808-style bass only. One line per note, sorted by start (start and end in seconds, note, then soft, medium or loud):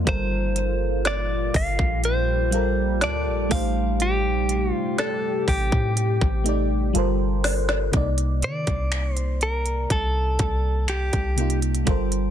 0.07 1.50 G1 loud
1.54 1.78 G1 loud
1.79 3.04 A#1 loud
3.02 3.28 D2 loud
3.27 3.50 A#1 loud
3.51 4.27 A1 loud
4.25 4.72 A#1 loud
5.48 5.71 A1 loud
5.72 6.20 A2 medium
6.22 6.92 A1 loud
6.95 7.90 G1 loud
7.94 8.45 C2 loud
8.43 8.66 D#3 loud
8.67 9.86 C2 medium
9.90 10.38 C2 loud
10.39 11.10 C2 loud
11.13 11.84 C2 loud
11.87 12.30 G1 loud